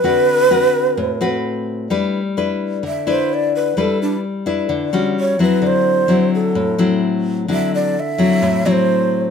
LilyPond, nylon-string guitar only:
\new Staff \with { instrumentName = "Nylon-string guitar" } { \time 4/4 \key g \major \tempo 4 = 129 << { <c' fis' b'>4 <c' fis' b'>4. <c' fis' b'>4. | <d' e' b'>8 r8 <d' e' b'>4 r8 <d' e' b'>4. | <d' e' b'>4 r8 <d' e' b'>4 <g cis' fis'>4 <fis c' e'>8~ | <fis c' e'>4 <fis c' e'>4. <fis c' e'>4. |
<fis c' e'>4 r8 <fis c' e'>4 <fis c' e'>4. | } \\ { d2 a,2 | g2 d2 | g2 d4 r4 | d2 a,2 |
d2 a,2 | } >> }